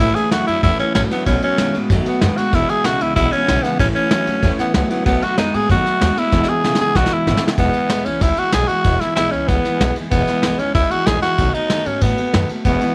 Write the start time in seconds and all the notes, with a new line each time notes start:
0.00 A2 E3 A3 C#4 E4
0.15 A3 C#4 E4 G#4, ride
0.31 E2 A2 E3 F#3 A3 C#4 E4 F#4, snare, ride
0.47 F#2 A2 F#3 A3 C#4 E4, ride
0.63 E2 A2 E3 A3 C#4 E4, kick, ride
0.79 A3 C#4 E4, muted upright bass stroke, snare, ride
0.95 A1 A2 E3 F#3 A3 C#4 E4, snare, ride
1.11 A2 F#3 A3 B3 C#4 E4, muted upright bass stroke, snare, ride
1.26 B1 B2 D#3 F#3 A3 B3 C#4 F#4, kick, ride
1.42 B3 C#4 F#4, muted upright bass stroke, ride
1.47 A3
1.58 F#2 B2 D#3 G#3 A3, snare, ride
1.62 B3 F#4
1.74 A2 B2 G#3 B3 F#4, ride
1.79 A3
1.90 F#2 B2 D#3 F#3 A3 B3 F#4, kick, ride
2.06 A3 B3 F#4, muted upright bass stroke, ride
2.21 F#2 B2 D#3 G#3 A3 B3 F#4, snare, ride
2.37 B2 G#3 A3 B3 F#4, muted upright bass stroke, snare, ride
2.53 E1 E2 B2 E3 G#3 B3 E4, kick, ride
2.69 E3 G#3 B3 E4 G#4, ride
2.84 B1 E2 C#3 E3 G#3 B3 E4 F#4, snare, ride
3.00 C#2 E2 C#3 E3 G#3 B3 E4, ride
3.15 B1 E2 B2 E3 G#3 B3 E4, kick, ride
3.31 E3 G#3 B3 C#4 E4, muted upright bass stroke, ride
3.46 B1 E2 C#3 E3 G#3 B3 E4, snare, ride
3.63 E2 C#3 E3 G#3 B3 E4, muted upright bass stroke, snare, ride
3.79 A1 A2 E3 A3 C#4 E4, kick, snare, ride
3.95 A3 C#4 E4, muted upright bass stroke, ride
4.11 E2 A2 E3 F#3 A3 C#4 E4, snare, ride
4.27 F#2 A2 F#3 A3 C#4 E4, ride
4.43 E2 A2 E3 A3 C#4 E4, kick, ride
4.58 A3 B3 C#4 E4, muted upright bass stroke, snare, ride
4.74 C#2 A2 E3 F#3 A3 B3 C#4 E4, snare, ride
4.90 A2 F#3 A3 B3 C#4 E4, ride
5.05 B1 B2 D#3 F#3 A3 B3 F#4, kick, ride
5.22 A3 B3 F#4, muted upright bass stroke, ride
5.37 F#2 B2 D#3 G#3 A3 B3 D#4 F#4, snare, ride
5.54 A2 B2 G#3 A3 B3 F#4 G#4, ride
5.70 F#2 B2 D#3 F#3 A3 B3 F#4, kick, ride
5.85 A3 B3 F#4, snare, ride
6.00 D#2 B2 D#3 G#3 A3 B3 F#4, snare, ride
6.16 B2 G#3 A3 B3 E4 F#4, muted upright bass stroke, ride
6.32 E1 E2 B2 E3 G#3 B3 E4, kick, snare
6.44 snare
6.49 E3 G#3 B3 E4 G#4
6.63 B1 E2 C#3 E3 G#3 B3 E4, snare
6.75 E4, snare
6.79 C#2 E2 C#3 E3 G#3 B3 G#4
6.95 B1 E2 B2 E3 G#3 B3 E4 F#4, kick, snare
7.06 snare
7.10 E3 G#3 B3 E4, muted upright bass stroke
7.26 G#1 E2 C#3 E3 G#3 B3 E4, snare
7.37 snare
7.42 E2 C#3 E3 G#3 B3 E4
7.48 snare
7.58 E1 E2 B2 E3 G#3 B3 E4, kick, ride
7.73 G#3 B3 E4, ride
7.89 B1 E2 B2 E3 G#3 B3 E4, snare, ride
8.05 C#2 E3 G#3 B3 C#4 E4, ride
8.20 C#2 E3 G#3 B3 E4, kick, snare, ride
8.37 E3 G#3 B3 E4 F#4, muted upright bass stroke, ride
8.52 B1 E2 B2 E3 G#3 B3 E4 G#4, snare, ride
8.68 E3 G#3 B3 E4 F#4, ride
8.84 E1 E2 B2 E3 G#3 B3 E4, kick, ride
9.00 E3 G#3 B3 E4, snare, ride
9.16 B1 E2 B2 E3 G#3 B3 E4, snare, ride
9.31 C#2 E3 G#3 B3 C#4 E4, ride
9.48 C#2 E3 G#3 B3 E4, kick, snare, ride
9.65 E3 G#3 B3 E4, snare, ride
9.80 B1 E2 B2 E3 G#3 B3 E4, snare, ride
9.96 E3 G#3 B3 E4, muted upright bass stroke, ride
10.11 E1 E2 B2 E3 G#3 B3 E4, kick, ride
10.27 E3 G#3 B3 E4, muted upright bass stroke, snare, ride
10.43 B1 E2 B2 E3 G#3 E4, snare, ride
10.47 B3
10.59 E3 G#3 B3 C#4 E4, ride
10.74 C#2 E3 G#3 B3 E4, kick, ride
10.91 E3 G#3 B3 E4 F#4, muted upright bass stroke, ride
11.06 A#1 E2 B2 E3 G#3 B3 E4 G#4, snare, ride
11.22 E3 G#3 B3 E4 F#4, muted upright bass stroke, snare, ride
11.38 B1 B2 D#3 A3 B3 F#4, kick, ride
11.54 A3 B3 D#4 F#4, ride
11.70 F#2 B2 D#3 A3 B3 F#4, snare, ride
11.86 G#2 A3 B3 C#4 F#4, ride
12.01 A2 D#3 A3 B3 F#4, kick, ride
12.18 A3 B3 F#4, muted upright bass stroke, ride
12.34 F#2 B2 D#3 A3 B3 F#4, snare, ride
12.49 A3 B3 F#4, muted upright bass stroke, ride
12.65 E1 E2 B2 E3 G#3 B3 E4, kick, ride
12.81 E2 B2 E3 G#3 B3 E4, muted upright bass stroke, ride